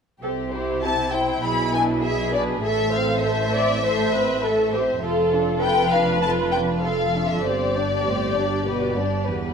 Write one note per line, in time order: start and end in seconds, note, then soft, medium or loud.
0.21 1.39 C2 soft
0.21 1.39 C3 soft
0.21 0.51 C4 soft
0.21 0.51 G4 soft
0.21 0.31 A4 soft
0.53 0.83 E4 soft
0.53 0.82 G4 soft
0.53 0.83 C5 soft
0.83 1.14 C4 soft
0.83 2.04 E4 soft
0.83 1.13 G4 soft
0.83 1.11 A5 medium
1.13 1.43 E4 soft
1.13 1.43 C5 soft
1.13 1.43 G5 medium
1.43 2.64 B1 soft
1.43 2.63 B2 soft
1.43 1.72 E4 soft
1.43 1.71 G#4 soft
1.43 1.74 B5 medium
1.74 2.04 D4 soft
1.74 2.04 B4 soft
1.74 1.83 G#5 medium
2.03 2.34 E4 soft
2.03 2.34 G#4 soft
2.03 2.63 G#4 soft
2.03 2.33 E5 medium
2.33 2.63 D4 soft
2.33 2.63 B4 soft
2.33 2.42 D5 medium
2.63 4.98 A1 medium
2.63 4.99 A2 medium
2.63 2.91 A3 soft
2.63 2.92 A4 soft
2.63 3.24 A4 medium
2.63 2.93 E5 medium
2.93 3.23 C4 soft
2.93 3.23 C5 soft
2.93 3.24 F5 medium
3.23 3.53 A3 soft
3.23 3.53 A4 soft
3.23 3.54 C5 medium
3.23 4.99 E5 medium
3.52 3.83 C4 soft
3.52 3.83 C5 soft
3.52 3.84 D5 medium
3.82 4.11 A3 soft
3.82 4.11 A4 soft
3.82 4.13 C5 medium
4.12 4.43 C4 soft
4.12 4.43 B4 medium
4.12 4.43 C5 soft
4.42 4.72 A3 soft
4.42 4.72 A4 soft
4.42 4.73 A4 medium
4.73 5.03 C4 soft
4.73 4.81 G4 soft
4.73 5.03 C5 soft
5.02 7.40 F1 medium
5.02 7.40 F2 soft
5.02 5.30 F4 soft
5.02 5.30 A4 soft
5.02 5.61 A4 medium
5.32 5.62 D4 soft
5.32 5.62 F4 soft
5.62 5.92 F4 soft
5.62 5.93 A4 soft
5.62 6.83 B4 medium
5.62 5.90 G5 medium
5.92 6.23 D4 soft
5.92 6.21 F4 soft
5.92 6.22 F5 medium
6.21 6.50 F4 soft
6.21 6.51 A4 soft
6.21 6.29 A5 medium
6.52 6.83 D4 soft
6.52 6.82 F4 soft
6.52 6.60 G5 medium
6.82 7.13 F4 soft
6.82 7.43 A4 soft
6.82 7.14 A4 soft
6.82 7.27 F5 medium
7.14 7.44 D4 soft
7.14 7.45 F4 soft
7.29 7.44 E5 soft
7.44 9.54 G1 soft
7.44 7.99 G2 soft
7.44 7.73 C4 soft
7.44 9.54 G4 soft
7.44 7.73 C5 soft
7.44 9.29 D5 medium
7.76 8.07 D4 soft
7.76 8.06 D5 soft
8.05 8.34 A2 soft
8.05 8.36 C4 soft
8.05 8.36 C5 soft
8.36 8.67 G2 soft
8.36 8.67 D4 soft
8.36 8.67 D5 soft
8.67 8.98 B2 medium
8.67 8.96 B3 soft
8.67 8.95 B4 soft
8.98 9.29 G2 soft
8.98 9.29 D4 soft
8.98 9.29 D5 soft
9.28 9.54 E2 soft
9.28 9.54 B3 soft
9.28 9.54 B4 soft